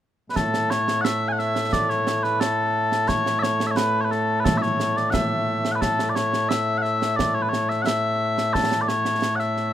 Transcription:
0.30 9.73 A2 medium
0.30 9.73 A3 medium
0.30 0.36 B4 medium
0.36 0.71 A4 medium
0.36 concert bass drum soft
0.36 snare medium
0.54 snare medium
0.71 1.01 C#5 loud
0.71 snare medium
0.88 snare medium
1.01 1.28 E5 loud
1.01 1.04 F#5 loud
1.01 snare medium
1.28 1.39 F#5 medium
1.28 1.32 G#5 medium
1.39 1.73 E5 loud
1.39 snare soft
1.56 snare medium
1.73 1.89 D5 loud
1.73 concert bass drum soft
1.73 snare medium
1.89 2.23 C#5 medium
1.89 snare soft
2.07 snare medium
2.23 2.40 B4 medium
2.23 snare soft
2.40 3.08 A4 medium
2.40 snare medium
2.92 snare medium
3.08 3.39 C#5 loud
3.08 concert bass drum soft
3.08 snare medium
3.26 snare medium
3.39 3.67 C#5 loud
3.39 3.43 E5 loud
3.43 snare medium
3.60 snare medium
3.67 3.71 E5 medium
3.71 3.77 C#5 medium
3.77 4.01 B4 loud
3.77 snare loud
4.01 4.11 B4 medium
4.01 4.05 C#5 medium
4.11 4.40 A4 medium
4.11 snare soft
4.40 4.45 B4 medium
4.45 4.58 A4 medium
4.45 concert bass drum medium
4.45 snare medium
4.58 4.62 E5 medium
4.62 4.96 C#5 medium
4.62 snare soft
4.80 snare medium
4.96 5.10 D5 medium
4.96 snare soft
5.10 5.72 E5 loud
5.10 5.14 F#5 loud
5.10 concert bass drum medium
5.10 snare medium
5.65 snare medium
5.72 5.81 B4 medium
5.72 5.75 F#5 medium
5.81 6.10 A4 medium
5.81 concert bass drum soft
5.81 snare medium
5.99 snare medium
6.10 6.15 D5 medium
6.15 6.49 C#5 loud
6.15 snare medium
6.33 snare medium
6.49 6.78 E5 loud
6.49 snare medium
6.78 6.82 F#5 medium
6.82 7.16 E5 medium
6.82 snare soft
7.02 snare medium
7.16 7.34 D5 medium
7.16 concert bass drum soft
7.16 snare medium
7.34 7.42 C#5 medium
7.42 7.49 B4 medium
7.49 7.69 C#5 medium
7.53 snare medium
7.69 7.82 E5 medium
7.69 snare soft
7.82 8.54 E5 loud
7.82 7.86 F#5 loud
7.87 snare loud
8.38 snare medium
8.54 8.81 A4 medium
8.54 concert bass drum soft
8.54 snare medium
8.72 snare medium
8.81 8.88 D5 medium
8.88 9.36 C#5 loud
8.88 snare medium
9.05 snare medium
9.22 snare medium
9.36 9.40 F#5 medium
9.36 snare soft
9.40 9.73 E5 medium
9.57 snare soft

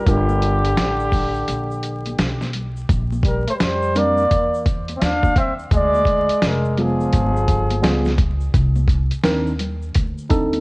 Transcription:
0.00 0.10 A#4 medium
0.06 0.74 G1 loud
0.06 2.54 D3 medium
0.06 0.60 G3 medium
0.06 0.60 D4 medium
0.06 0.60 F4 medium
0.06 2.55 G4 loud
0.06 0.61 A#4 medium
0.06 kick loud
0.06 closed hi-hat medium
0.06 shaker medium
0.29 high conga medium
0.29 shaker soft
0.42 closed hi-hat medium
0.42 high conga soft
0.42 shaker soft
0.65 closed hi-hat soft
0.65 shaker soft
0.77 1.45 A1 medium
0.77 snare loud
0.77 closed hi-hat medium
0.77 low conga medium
0.77 shaker medium
1.00 shaker soft
1.12 kick medium
1.12 open hi-hat medium
1.12 low conga medium
1.12 shaker soft
1.35 shaker soft
1.48 2.15 A#1 medium
1.48 closed hi-hat medium
1.48 high conga soft
1.48 shaker soft
1.71 shaker soft
1.83 closed hi-hat medium
1.83 shaker soft
2.06 closed hi-hat soft
2.06 high conga medium
2.06 shaker soft
2.19 2.86 B1 medium
2.19 snare loud
2.19 closed hi-hat medium
2.19 shaker medium
2.41 snare soft
2.41 high conga medium
2.41 shaker soft
2.53 closed hi-hat medium
2.53 low conga medium
2.53 shaker soft
2.76 shaker soft
2.89 3.44 A#1 loud
2.89 kick loud
2.89 closed hi-hat medium
2.89 shaker medium
3.12 high conga medium
3.12 shaker medium
3.23 3.45 G3 medium
3.23 3.46 A#4 medium
3.23 kick medium
3.23 closed hi-hat medium
3.23 shaker soft
3.47 3.51 A3 medium
3.47 3.53 C5 medium
3.47 muted upright bass stroke soft
3.47 closed hi-hat medium
3.47 shaker soft
3.54 3.59 G3 medium
3.54 3.64 B4 medium
3.59 4.27 F2 medium
3.59 3.97 G3 medium
3.59 4.00 C5 medium
3.59 snare loud
3.59 closed hi-hat loud
3.59 shaker medium
3.82 shaker soft
3.95 4.22 G3 medium
3.95 4.66 A#3 medium
3.95 4.23 C4 medium
3.95 4.23 D4 medium
3.95 4.23 A#4 medium
3.95 4.67 D5 loud
3.95 closed hi-hat medium
3.95 low conga medium
3.95 shaker medium
4.17 shaker soft
4.31 4.98 E2 medium
4.31 kick medium
4.31 closed hi-hat medium
4.31 high conga soft
4.31 shaker medium
4.54 shaker medium
4.66 kick medium
4.66 closed hi-hat medium
4.66 shaker soft
4.88 closed hi-hat soft
4.88 high conga medium
4.88 shaker soft
4.96 5.04 C4 medium
4.96 5.05 E5 medium
5.01 5.68 D#2 medium
5.01 5.37 D4 loud
5.01 5.38 F5 loud
5.01 snare loud
5.01 closed hi-hat medium
5.01 shaker medium
5.23 kick medium
5.23 high conga medium
5.23 shaker soft
5.36 5.53 C4 medium
5.36 5.55 E5 medium
5.36 kick loud
5.36 closed hi-hat medium
5.36 low conga medium
5.36 shaker soft
5.59 shaker medium
5.71 6.26 D2 loud
5.71 6.44 G#3 medium
5.71 kick loud
5.71 closed hi-hat medium
5.71 shaker medium
5.76 6.48 D5 loud
5.94 high conga medium
5.94 shaker soft
6.05 kick medium
6.05 closed hi-hat medium
6.05 shaker soft
6.29 muted upright bass stroke soft
6.29 closed hi-hat medium
6.29 shaker soft
6.42 7.09 F1 medium
6.42 6.81 G#3 medium
6.42 snare loud
6.42 closed hi-hat medium
6.42 shaker medium
6.47 6.83 A#4 medium
6.65 shaker soft
6.77 8.20 F3 medium
6.77 7.31 G#3 medium
6.77 7.31 B3 medium
6.77 7.31 F4 medium
6.77 7.32 G#4 medium
6.77 closed hi-hat medium
6.77 low conga medium
6.77 shaker soft
6.82 8.21 G#4 medium
7.00 shaker soft
7.12 7.80 G1 loud
7.12 kick medium
7.12 closed hi-hat medium
7.12 high conga soft
7.12 shaker medium
7.36 shaker soft
7.48 kick medium
7.48 closed hi-hat medium
7.48 shaker soft
7.71 closed hi-hat soft
7.71 high conga medium
7.71 shaker soft
7.82 8.50 C#2 medium
7.82 8.10 G3 medium
7.82 8.11 B3 medium
7.82 8.11 F4 medium
7.82 8.11 G#4 medium
7.82 snare loud
7.82 closed hi-hat loud
7.82 shaker medium
8.05 snare soft
8.05 high conga medium
8.05 shaker medium
8.18 kick loud
8.18 closed hi-hat medium
8.18 low conga medium
8.18 shaker soft
8.40 shaker soft
8.54 9.09 C2 loud
8.54 kick loud
8.54 closed hi-hat medium
8.54 shaker medium
8.75 high conga medium
8.75 shaker soft
8.88 kick medium
8.88 closed hi-hat medium
8.88 shaker soft
9.11 muted upright bass stroke soft
9.11 closed hi-hat soft
9.11 shaker soft
9.23 9.92 D#2 medium
9.23 9.51 D#3 medium
9.23 9.52 C4 medium
9.23 9.52 D4 medium
9.23 9.52 A#4 medium
9.23 snare loud
9.23 closed hi-hat medium
9.23 shaker medium
9.47 shaker soft
9.59 closed hi-hat medium
9.59 low conga medium
9.59 shaker medium
9.82 shaker soft
9.95 10.60 D2 medium
9.95 kick medium
9.95 closed hi-hat loud
9.95 high conga soft
9.95 shaker medium
10.18 shaker medium
10.29 10.60 C4 medium
10.29 10.60 D4 medium
10.29 10.60 D#4 medium
10.29 10.60 A4 medium
10.29 kick medium
10.29 closed hi-hat medium
10.29 shaker medium
10.53 closed hi-hat soft
10.53 high conga medium
10.53 shaker soft

